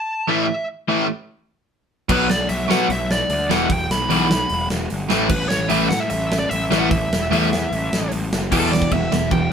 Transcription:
0.00 0.31 A5 loud
0.28 0.44 A2 medium
0.28 0.45 E3 medium
0.28 0.45 A3 loud
0.28 0.67 E5 medium
0.88 1.05 A2 medium
0.88 1.05 E3 loud
0.88 1.05 A3 loud
2.09 2.26 B1 medium
2.09 2.25 B2 medium
2.09 2.26 F#3 medium
2.09 2.26 B3 loud
2.09 2.31 B4 medium
2.09 kick loud
2.09 crash medium
2.29 2.46 B1 medium
2.29 2.49 D5 medium
2.29 snare loud
2.49 2.66 B1 loud
2.49 2.70 E5 medium
2.49 open hi-hat medium
2.70 2.86 B2 medium
2.70 2.87 B2 medium
2.70 2.86 F#3 medium
2.70 2.87 B3 medium
2.70 2.91 F#5 medium
2.70 snare loud
2.89 3.23 B1 loud
2.89 3.11 E5 medium
2.89 open hi-hat medium
3.11 3.48 D5 loud
3.11 snare loud
3.29 3.46 D2 medium
3.29 open hi-hat medium
3.50 3.67 E1 medium
3.50 3.66 E2 loud
3.50 3.66 B2 loud
3.50 3.66 E3 loud
3.50 3.71 F#5 medium
3.50 snare loud
3.70 3.87 E1 medium
3.70 3.92 G5 loud
3.70 kick loud
3.70 open hi-hat medium
3.90 4.07 B1 loud
3.90 4.67 B5 loud
3.90 snare loud
4.10 4.44 B1 loud
4.10 4.26 E2 loud
4.10 4.27 B2 loud
4.10 4.27 E3 loud
4.10 open hi-hat medium
4.31 snare loud
4.49 4.67 E1 medium
4.49 open hi-hat medium
4.70 4.87 E1 loud
4.70 snare loud
4.90 5.08 G1 medium
4.90 open hi-hat medium
5.10 5.28 A1 medium
5.10 5.27 A2 medium
5.10 5.27 E3 medium
5.10 5.27 A3 loud
5.10 snare loud
5.29 5.47 A1 medium
5.29 5.48 B4 medium
5.29 kick loud
5.29 crash loud
5.49 5.67 A1 medium
5.49 5.68 C#5 loud
5.49 snare loud
5.69 5.87 A1 loud
5.69 5.87 A2 medium
5.69 5.87 E3 loud
5.69 5.87 A3 loud
5.69 5.88 E5 medium
5.69 open hi-hat medium
5.89 6.08 A2 medium
5.89 6.00 F#5 loud
5.89 snare loud
6.00 6.09 E5 medium
6.10 6.45 A1 medium
6.10 6.39 E5 loud
6.10 open hi-hat medium
6.32 snare loud
6.39 6.49 D5 loud
6.49 6.68 A1 medium
6.49 6.79 E5 loud
6.49 open hi-hat medium
6.71 6.88 A1 loud
6.71 6.87 A2 loud
6.71 6.87 E3 loud
6.71 6.87 A3 loud
6.71 snare loud
6.79 6.90 F#5 loud
6.90 7.08 A1 medium
6.90 8.11 E5 loud
6.90 kick loud
6.90 open hi-hat medium
7.11 7.28 E1 medium
7.11 snare loud
7.31 7.65 E2 loud
7.31 7.47 A2 loud
7.31 7.48 E3 loud
7.31 7.48 A3 loud
7.31 open hi-hat medium
7.53 snare loud
7.72 7.88 A1 loud
7.72 open hi-hat medium
7.92 8.09 A1 medium
7.92 snare loud
8.12 8.29 A1 loud
8.12 open hi-hat medium
8.33 8.49 F#1 loud
8.33 snare loud
8.51 8.83 E1 medium
8.51 8.70 E2 medium
8.51 8.70 B2 medium
8.51 8.71 E3 medium
8.51 8.71 A4 medium
8.51 kick loud
8.51 crash loud
8.51 crash medium
8.71 8.89 E2 medium
8.71 8.90 B2 medium
8.71 8.91 D5 medium
8.71 snare loud
8.82 kick medium
8.92 9.08 E1 medium
8.92 9.10 E2 medium
8.92 9.10 B2 medium
8.92 9.31 E5 medium
8.92 kick loud
8.92 crash medium
9.12 9.28 E1 medium
9.12 9.30 E2 medium
9.12 9.30 B2 medium
9.12 snare loud
9.31 9.47 E1 loud
9.31 9.49 E2 medium
9.31 9.50 B2 medium
9.31 9.51 G5 medium
9.31 kick loud
9.31 crash medium

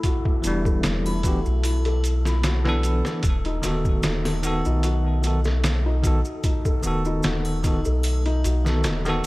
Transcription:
0.00 9.26 A3 medium
0.00 0.44 E4 medium
0.00 0.05 F#4 medium
0.00 0.66 A4 medium
0.00 9.26 A4 medium
0.00 kick medium
0.00 closed hi-hat medium
0.05 0.25 F#4 medium
0.05 maracas soft
0.25 kick medium
0.42 0.80 E1 medium
0.42 1.19 E3 medium
0.42 1.19 B3 medium
0.42 1.20 D4 medium
0.42 0.56 E4 medium
0.42 closed hi-hat medium
0.42 maracas medium
0.47 1.21 G3 loud
0.65 1.03 A4 medium
0.65 kick medium
0.65 maracas soft
0.83 1.42 E1 medium
0.83 snare loud
0.83 closed hi-hat medium
0.83 maracas soft
1.06 1.23 E4 loud
1.06 triangle medium
1.06 maracas soft
1.23 1.38 E3 medium
1.23 1.38 B3 medium
1.23 1.39 D4 medium
1.23 1.45 F#4 medium
1.23 kick medium
1.23 closed hi-hat medium
1.23 maracas medium
1.28 1.40 G4 medium
1.46 3.02 B1 medium
1.46 maracas soft
1.64 1.76 E4 medium
1.64 closed hi-hat medium
1.64 triangle medium
1.64 maracas medium
1.85 2.24 A4 medium
1.85 closed hi-hat soft
2.04 closed hi-hat medium
2.04 maracas medium
2.25 2.43 E4 medium
2.25 snare soft
2.25 maracas soft
2.43 2.65 F#4 medium
2.43 snare loud
2.43 closed hi-hat medium
2.43 maracas soft
2.64 3.21 E3 loud
2.64 3.22 B3 medium
2.64 3.23 D4 medium
2.64 snare medium
2.69 3.23 A4 loud
2.83 2.97 E4 medium
2.83 closed hi-hat medium
2.83 maracas medium
3.05 3.24 A4 medium
3.05 snare medium
3.05 maracas soft
3.23 3.60 D#1 medium
3.23 kick loud
3.23 closed hi-hat medium
3.23 maracas medium
3.45 3.63 D#4 loud
3.45 closed hi-hat soft
3.62 4.00 D#1 medium
3.62 4.38 D#3 medium
3.62 4.39 B3 medium
3.62 3.85 F#4 medium
3.62 4.40 F#4 medium
3.62 snare soft
3.62 closed hi-hat medium
3.62 maracas medium
3.67 4.41 A4 medium
3.85 kick medium
3.85 maracas soft
4.03 4.62 D#1 medium
4.03 4.16 D#4 medium
4.03 snare loud
4.03 closed hi-hat medium
4.03 maracas soft
4.25 4.63 A4 medium
4.25 snare soft
4.25 triangle medium
4.25 maracas soft
4.42 5.19 D#3 medium
4.42 5.20 B3 medium
4.42 5.20 F#4 medium
4.42 closed hi-hat medium
4.42 maracas medium
4.47 5.21 A4 medium
4.65 6.22 B1 medium
4.65 4.83 D#4 medium
4.65 maracas soft
4.83 5.04 F#4 medium
4.83 closed hi-hat medium
4.83 maracas medium
5.22 5.37 D#3 medium
5.22 5.38 B3 medium
5.22 5.36 D#4 medium
5.22 5.39 F#4 medium
5.22 closed hi-hat medium
5.22 maracas medium
5.27 5.40 A4 medium
5.45 5.83 A4 medium
5.45 snare soft
5.45 maracas soft
5.64 snare loud
5.64 closed hi-hat medium
5.64 maracas medium
5.86 6.03 D#4 medium
6.02 6.17 D#3 medium
6.02 6.18 B3 medium
6.02 6.25 F#4 medium
6.02 6.19 F#4 medium
6.02 kick medium
6.02 closed hi-hat medium
6.02 maracas medium
6.07 6.20 A4 medium
6.25 maracas soft
6.44 6.56 D#4 medium
6.44 kick loud
6.44 closed hi-hat medium
6.44 maracas soft
6.65 7.03 A4 medium
6.65 kick medium
6.65 maracas soft
6.82 7.20 D#1 medium
6.82 7.59 D#3 medium
6.82 7.60 B3 medium
6.82 7.61 F#4 medium
6.82 maracas medium
6.87 7.61 A4 medium
7.05 7.23 D#4 medium
7.05 maracas soft
7.23 7.82 D#1 medium
7.23 7.45 F#4 medium
7.23 snare loud
7.23 closed hi-hat medium
7.23 maracas soft
7.45 triangle medium
7.45 maracas soft
7.63 7.78 D#3 medium
7.63 7.78 B3 medium
7.63 7.76 D#4 medium
7.63 7.79 F#4 medium
7.63 kick medium
7.63 closed hi-hat medium
7.63 maracas medium
7.67 7.80 A4 medium
7.85 8.45 B1 medium
7.85 8.23 A4 medium
7.85 maracas soft
8.03 closed hi-hat medium
8.03 triangle medium
8.03 maracas medium
8.26 8.43 D#4 loud
8.26 closed hi-hat soft
8.44 8.87 B1 medium
8.44 8.64 F#4 medium
8.44 closed hi-hat medium
8.44 maracas medium
8.64 9.00 D#3 medium
8.64 9.00 B3 medium
8.64 9.01 F#4 medium
8.64 snare soft
8.64 maracas soft
8.69 9.02 A4 medium
8.84 9.20 D#1 medium
8.84 8.96 D#4 medium
8.84 snare loud
8.84 closed hi-hat medium
8.84 maracas medium
9.05 9.26 D#3 medium
9.05 9.26 B3 medium
9.05 9.26 F#4 medium
9.05 9.26 A4 medium
9.05 snare medium
9.05 maracas soft
9.09 9.26 A4 loud

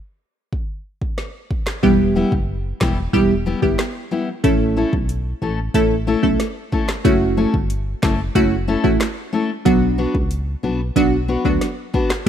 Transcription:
0.53 kick medium
1.02 kick medium
1.18 cross-stick medium
1.18 snare medium
1.51 kick loud
1.67 snare loud
1.67 clap medium
1.83 2.24 E1 loud
1.83 2.43 G3 loud
1.83 2.43 B3 medium
1.83 2.43 E4 medium
1.83 2.43 G4 loud
1.83 kick loud
2.16 2.32 G3 medium
2.16 2.32 B3 medium
2.16 2.32 E4 medium
2.16 2.32 G4 medium
2.32 2.73 F#1 medium
2.32 kick medium
2.81 3.09 E1 loud
2.81 2.97 G3 medium
2.81 2.97 B3 medium
2.81 2.97 E4 medium
2.81 2.98 G4 medium
2.81 kick loud
2.81 snare loud
2.81 clap medium
3.13 3.55 E1 loud
3.13 3.34 G3 loud
3.13 3.34 B3 medium
3.13 3.34 E4 medium
3.13 3.34 G4 loud
3.13 kick medium
3.46 3.62 G3 medium
3.46 3.62 B3 medium
3.46 3.62 E4 medium
3.46 3.61 G4 medium
3.62 3.76 G1 medium
3.62 3.83 G3 medium
3.62 3.83 B3 medium
3.62 3.83 E4 medium
3.62 3.83 G4 medium
3.62 muted steel-string acoustic guitar stroke soft
3.62 kick medium
3.79 cross-stick medium
3.79 snare loud
3.79 clap medium
4.11 4.27 G3 medium
4.11 4.28 B3 medium
4.11 4.28 E4 medium
4.11 4.28 G4 medium
4.44 4.85 A1 loud
4.44 5.04 A3 medium
4.44 5.04 C#4 medium
4.44 5.04 E4 medium
4.44 5.04 A4 loud
4.44 kick loud
4.44 closed hi-hat medium
4.76 4.93 A3 medium
4.76 4.93 C#4 medium
4.76 4.93 E4 loud
4.76 4.93 A4 loud
4.93 5.34 B1 medium
4.93 kick medium
5.09 closed hi-hat medium
5.42 5.69 A1 medium
5.42 5.58 A3 medium
5.42 5.58 C#4 medium
5.42 5.58 E4 medium
5.42 5.58 A4 medium
5.74 6.16 A1 loud
5.74 5.95 A3 loud
5.74 5.95 C#4 medium
5.74 5.95 E4 medium
5.74 5.96 A4 loud
5.74 kick medium
5.74 closed hi-hat medium
6.07 6.23 A3 medium
6.07 6.23 C#4 medium
6.07 6.24 E4 loud
6.07 6.24 A4 loud
6.23 6.37 B1 medium
6.23 6.44 A3 medium
6.23 6.44 C#4 medium
6.23 6.44 E4 medium
6.23 6.44 A4 medium
6.23 kick medium
6.40 cross-stick medium
6.40 snare medium
6.40 closed hi-hat medium
6.72 6.88 A3 medium
6.72 6.89 C#4 medium
6.72 6.89 E4 medium
6.72 6.89 A4 medium
6.72 kick loud
6.89 snare loud
6.89 clap medium
7.04 7.46 F#1 loud
7.04 7.65 A3 medium
7.04 7.65 C#4 medium
7.04 7.65 E4 medium
7.04 7.65 F#4 loud
7.04 kick loud
7.04 closed hi-hat medium
7.37 7.54 A3 medium
7.37 7.54 C#4 medium
7.37 7.54 E4 medium
7.37 7.54 A4 medium
7.54 7.95 G1 medium
7.54 kick medium
7.70 closed hi-hat medium
8.02 8.30 F#1 medium
8.02 8.19 A3 medium
8.02 8.19 C#4 medium
8.02 8.19 E4 medium
8.02 8.19 A4 medium
8.02 kick medium
8.02 snare loud
8.02 clap loud
8.35 8.77 F#1 loud
8.35 8.56 A3 loud
8.35 8.56 C#4 medium
8.35 8.56 E4 medium
8.35 8.56 F#4 loud
8.35 kick medium
8.35 closed hi-hat medium
8.68 8.84 A3 medium
8.68 8.84 C#4 medium
8.68 8.84 E4 medium
8.68 8.85 A4 loud
8.84 8.98 A1 medium
8.84 9.05 A3 medium
8.84 9.05 C#4 medium
8.84 9.05 E4 medium
8.84 9.05 F#4 medium
8.84 kick medium
9.01 cross-stick medium
9.01 snare loud
9.01 clap medium
9.01 closed hi-hat medium
9.33 9.49 A3 medium
9.33 9.49 C#4 medium
9.33 9.50 E4 medium
9.33 9.50 A4 loud
9.65 10.07 B1 loud
9.65 10.25 F#3 medium
9.65 10.26 B3 medium
9.65 10.26 D4 medium
9.65 10.26 F#4 loud
9.65 kick loud
9.65 closed hi-hat medium
9.98 10.14 B3 medium
9.98 10.15 D4 medium
9.98 10.15 F#4 medium
9.98 10.15 B4 medium
10.15 10.56 C#2 medium
10.15 kick medium
10.31 closed hi-hat medium
10.63 10.91 B1 medium
10.63 10.79 B3 medium
10.63 10.80 D4 medium
10.63 10.80 F#4 medium
10.63 10.80 B4 medium
10.96 11.37 B1 medium
10.96 11.17 F#3 loud
10.96 11.17 B3 medium
10.96 11.17 D4 medium
10.96 11.17 F#4 loud
10.96 kick medium
10.96 closed hi-hat medium
11.28 11.45 B3 medium
11.28 11.45 D4 medium
11.28 11.45 F#4 medium
11.28 11.45 B4 loud
11.45 11.59 D2 medium
11.45 11.66 F#3 medium
11.45 11.66 B3 medium
11.45 11.66 D4 medium
11.45 11.66 F#4 medium
11.45 kick medium
11.61 cross-stick medium
11.61 snare medium
11.61 closed hi-hat medium
11.93 12.10 B3 medium
11.93 12.10 D4 loud
11.93 12.10 F#4 loud
11.93 12.11 B4 loud
11.93 kick loud
12.10 snare loud
12.10 clap medium

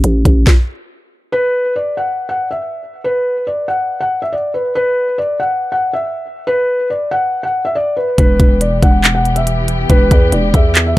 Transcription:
0.04 0.25 A1 loud
0.04 closed hi-hat medium
0.25 0.46 A1 loud
0.25 kick medium
0.25 closed hi-hat medium
0.47 kick loud
0.47 snare medium
1.32 1.73 B4 loud
1.76 1.95 D5 medium
1.97 2.27 F#5 medium
2.29 2.48 F#5 medium
2.51 3.01 E5 medium
3.04 3.44 B4 loud
3.47 3.66 D5 medium
3.68 3.98 F#5 medium
4.00 4.20 F#5 medium
4.22 4.31 E5 medium
4.33 4.52 D5 medium
4.54 4.73 B4 medium
4.75 5.16 B4 loud
5.18 5.37 D5 medium
5.40 5.70 F#5 medium
5.72 5.91 F#5 medium
5.93 6.44 E5 medium
6.47 6.87 B4 loud
6.90 7.09 D5 medium
7.11 7.41 F#5 medium
7.43 7.62 F#5 medium
7.65 7.74 E5 medium
7.75 7.94 D5 medium
7.97 8.16 B4 medium
8.18 8.39 E1 loud
8.18 10.99 E3 medium
8.18 10.99 B3 medium
8.18 10.99 G4 medium
8.18 8.59 B4 loud
8.18 kick loud
8.18 closed hi-hat medium
8.40 8.81 E1 loud
8.40 kick loud
8.40 closed hi-hat medium
8.61 8.80 D5 medium
8.61 closed hi-hat medium
8.82 9.86 E1 loud
8.82 9.13 F#5 medium
8.82 kick medium
8.82 closed hi-hat medium
9.04 clap loud
9.04 closed hi-hat medium
9.15 9.34 F#5 medium
9.25 closed hi-hat soft
9.36 9.86 E5 medium
9.36 closed hi-hat medium
9.47 closed hi-hat medium
9.68 closed hi-hat medium
9.90 10.10 E1 loud
9.90 10.30 B4 loud
9.90 kick loud
9.90 closed hi-hat medium
10.11 10.32 E2 loud
10.11 kick loud
10.11 closed hi-hat medium
10.32 10.53 E1 loud
10.32 10.52 D5 medium
10.32 closed hi-hat medium
10.54 10.95 E2 loud
10.54 10.84 E5 medium
10.54 kick medium
10.54 closed hi-hat medium
10.75 clap loud
10.75 closed hi-hat medium
10.86 10.99 E5 medium

